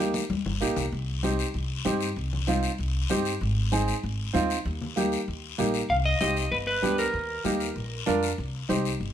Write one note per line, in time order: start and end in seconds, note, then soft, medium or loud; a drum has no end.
0.00 0.18 D#2 loud
0.00 0.20 A#3 medium
0.00 0.21 D#4 medium
0.00 0.21 G4 medium
0.00 short guiro medium
0.14 high conga medium
0.14 short guiro medium
0.30 0.42 D#2 medium
0.30 high conga medium
0.30 long guiro medium
0.45 0.59 G1 medium
0.45 low conga medium
0.61 0.75 A#1 medium
0.61 0.83 A#3 medium
0.61 0.83 D#4 medium
0.61 0.83 G4 medium
0.61 short guiro medium
0.76 0.91 C2 medium
0.76 low conga medium
0.76 short guiro medium
0.92 1.42 C2 loud
0.92 high conga soft
0.92 long guiro medium
1.23 1.45 C4 medium
1.23 1.45 D#4 medium
1.23 1.45 G4 medium
1.23 high conga medium
1.23 short guiro medium
1.39 short guiro medium
1.54 1.79 C2 medium
1.54 high conga soft
1.54 long guiro medium
1.85 2.10 G2 medium
1.85 2.07 C4 medium
1.85 2.07 D#4 medium
1.85 2.07 G4 medium
1.85 high conga medium
1.85 short guiro medium
2.01 short guiro medium
2.16 2.66 C2 medium
2.16 high conga soft
2.16 long guiro medium
2.33 low conga medium
2.47 2.69 C4 medium
2.47 2.69 D#4 medium
2.47 2.70 F4 medium
2.47 high conga medium
2.47 short guiro medium
2.63 short guiro medium
2.79 3.04 C2 medium
2.79 high conga soft
2.79 long guiro medium
3.09 3.35 G2 medium
3.09 3.32 C4 medium
3.09 3.32 D#4 medium
3.09 3.32 G4 medium
3.09 high conga medium
3.09 low conga medium
3.09 short guiro medium
3.25 short guiro medium
3.41 3.91 G#1 loud
3.41 high conga soft
3.41 long guiro medium
3.72 3.94 C4 medium
3.72 3.94 D#4 medium
3.72 3.94 G#4 medium
3.72 high conga medium
3.72 short guiro medium
3.88 short guiro medium
4.03 4.28 G#1 medium
4.03 high conga soft
4.03 long guiro medium
4.33 4.59 D#2 medium
4.33 4.56 C4 medium
4.33 4.56 D#4 medium
4.33 4.56 F4 loud
4.33 high conga medium
4.33 short guiro medium
4.50 short guiro medium
4.65 5.15 D#2 loud
4.65 high conga soft
4.65 long guiro medium
4.82 low conga medium
4.96 5.18 A#3 medium
4.96 5.18 D#4 medium
4.96 5.18 G4 medium
4.96 high conga medium
4.96 short guiro medium
5.12 short guiro medium
5.28 5.53 D#2 medium
5.28 high conga soft
5.28 long guiro medium
5.58 5.84 A#1 medium
5.58 5.80 A#3 medium
5.58 5.80 D#4 medium
5.58 5.80 G4 medium
5.58 high conga medium
5.58 low conga medium
5.58 short guiro medium
5.74 short guiro medium
5.90 6.15 C2 medium
5.90 5.95 F5 medium
5.90 long guiro medium
6.05 6.20 D#5 medium
6.21 6.46 C2 medium
6.21 6.42 C4 medium
6.21 6.43 D#4 medium
6.21 6.43 G4 medium
6.21 6.50 D#5 medium
6.21 high conga medium
6.21 short guiro medium
6.37 short guiro medium
6.52 6.77 G1 loud
6.52 6.57 B4 medium
6.52 high conga soft
6.52 long guiro medium
6.67 6.98 B4 medium
6.82 7.08 D2 medium
6.82 7.04 B3 medium
6.82 7.04 D4 medium
6.82 7.05 G4 medium
6.82 high conga medium
6.82 short guiro medium
6.98 8.19 A#4 medium
6.98 short guiro medium
7.14 7.39 D#2 medium
7.14 high conga soft
7.14 long guiro medium
7.44 7.70 D#2 medium
7.44 7.66 A#3 medium
7.44 7.66 D#4 medium
7.44 7.67 G4 medium
7.44 high conga medium
7.44 short guiro medium
7.60 short guiro medium
7.76 8.01 A#1 medium
7.76 high conga soft
7.76 long guiro medium
8.06 8.32 F2 medium
8.06 8.28 D4 medium
8.06 8.29 F4 medium
8.06 8.29 A#4 loud
8.06 high conga medium
8.06 low conga medium
8.06 short guiro medium
8.23 short guiro medium
8.38 8.63 C2 medium
8.38 high conga soft
8.38 long guiro medium
8.69 8.94 C2 medium
8.69 8.91 D#4 medium
8.69 8.91 G4 medium
8.69 8.91 C5 medium
8.69 high conga medium
8.69 short guiro medium
8.85 short guiro medium
9.00 9.13 G1 medium
9.00 high conga soft
9.00 long guiro medium